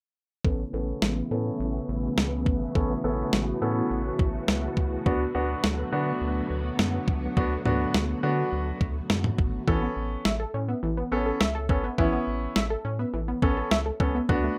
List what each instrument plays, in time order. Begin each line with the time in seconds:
0.44 analog synth bass A1, string machine C#3 E3 A3 B3 E4, grand piano B3 C#4 A4, kick
0.73 analog synth bass A1, grand piano B3 C#4 A4
1.02 analog synth bass A1, snare
1.31 analog synth bass A2, grand piano B3 C#4 A4
1.60 analog synth bass A1
1.88 analog synth bass A1
2.17 analog synth bass C#2, snare
2.46 analog synth bass G#1, kick
2.75 analog synth bass A1, grand piano B3 C#4 A4, string machine F#4, kick
3.04 analog synth bass A1, grand piano B3 C#4 A4
3.33 analog synth bass A1, snare
3.62 analog synth bass A2, grand piano B3 C#4 A4
3.91 analog synth bass A1
4.19 analog synth bass A1, kick
4.48 analog synth bass C#2, snare
4.77 analog synth bass C#2, kick
5.06 analog synth bass D2, string machine D3 F#3 B3, grand piano B3 D4 F#4, kick
5.35 analog synth bass D2, grand piano B3 D4 F#4
5.64 analog synth bass D2, snare
5.92 analog synth bass D3, grand piano B3 D4 F#4
6.21 analog synth bass D2
6.50 analog synth bass D2
6.79 analog synth bass F#2, snare
7.08 analog synth bass C#2, kick
7.37 analog synth bass D2, grand piano B3 D4 F#4, kick
7.65 analog synth bass D2, grand piano B3 D4 F#4, mid tom
7.94 analog synth bass D2, snare
8.23 analog synth bass D3, grand piano B3 D4 F#4
8.52 analog synth bass D2
8.81 analog synth bass D2, kick
9.10 analog synth bass F#2, snare
9.24 mid tom
9.38 analog synth bass G#1, kick
9.68 analog synth bass A1, synth pluck E3, grand piano B3 C#4 A4, kick
9.82 synth pluck B3
9.96 analog synth bass A1
10.25 analog synth bass A1, synth pluck E5, snare
10.40 synth pluck A4
10.54 analog synth bass A2, synth pluck C#4
10.69 synth pluck B3
10.83 analog synth bass A1, synth pluck E3
10.97 synth pluck B3
11.12 analog synth bass A1, grand piano B3 C#4 A4, synth pluck C#4
11.26 synth pluck A4
11.40 analog synth bass C#2, synth pluck E5, snare
11.55 synth pluck A4
11.69 analog synth bass G#1, grand piano B3 C#4 A4, synth pluck C#4, kick
11.84 synth pluck B3
11.98 analog synth bass A1, synth pluck E3, grand piano B3 C#4 E4, kick
12.13 synth pluck B3
12.27 analog synth bass A1
12.56 analog synth bass A1, synth pluck E5, snare
12.70 synth pluck A4
12.85 analog synth bass A2, synth pluck C#4
12.99 synth pluck B3
13.13 analog synth bass A1, synth pluck E3
13.28 synth pluck B3
13.42 analog synth bass A1, grand piano B3 C#4 A4, synth pluck C#4, kick
13.57 synth pluck A4
13.71 analog synth bass C#2, synth pluck E5, snare
13.86 synth pluck A4
14.00 analog synth bass C#2, grand piano B3 C#4 A4, synth pluck C#4, kick
14.15 synth pluck B3
14.29 analog synth bass D2, synth pluck D3, grand piano B3 D4 F#4, kick
14.44 synth pluck A3